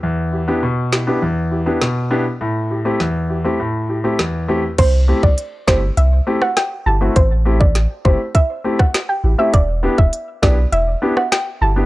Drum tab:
CC |----------------|----------------|x---------------|----------------|
HH |----------------|----------------|x---x---x---x---|x---x---x---x---|
SD |------o-----o---|----o-------o---|------o----ro---|----o------ro---|
BD |----------------|----------------|o--o--o---------|o--o--o-o--o----|

CC |----------------|
HH |x---x---x---x---|
SD |------o----ro---|
BD |o--o--o---------|